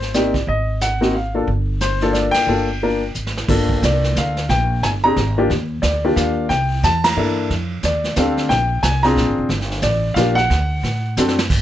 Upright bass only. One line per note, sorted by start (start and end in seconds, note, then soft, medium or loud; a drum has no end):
0.00 0.43 G#1 medium
0.47 1.44 G#1 medium
1.47 2.31 G1 medium
2.35 muted upright bass stroke soft
2.47 3.11 G1 medium
3.15 3.46 G#1 medium
3.48 3.81 G1 medium
3.82 4.15 C2 medium
4.16 4.48 D2 medium
4.49 4.82 A#1 medium
4.83 5.15 G1 medium
5.16 5.49 G#1 medium
5.50 5.82 D#2 medium
5.83 6.15 D2 medium
6.16 6.49 D#2 medium
6.50 6.82 C2 medium
6.83 7.16 E2 medium
7.16 7.49 G2 medium
7.50 7.83 F2 medium
7.83 8.16 D#2 medium
8.16 8.49 D2 medium
8.50 8.82 A#1 medium
8.83 9.16 C2 medium
9.16 9.26 A#1 medium
9.26 9.37 G#1 medium
9.38 9.48 F1 medium
9.49 9.82 G1 medium
9.82 10.15 A1 medium
10.16 10.49 A#1 medium
10.50 10.83 D2 medium
10.83 11.16 A2 medium
11.17 11.49 F#2 medium
11.50 11.62 G2 medium